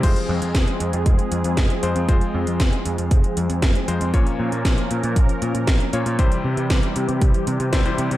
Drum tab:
CC |x---------------|----------------|----------------|----------------|
HH |xx-xxxxxxxxxxxxx|xx-xxxxxxxxxxxxx|xx-xxxxxxxxxxxxx|xx-xxxxxxxxxxxxx|
SD |----o-------o---|----o-------o---|----o-------o---|----o-------o---|
BD |o---o---o---o---|o---o---o---o---|o---o---o---o---|o---o---o---o---|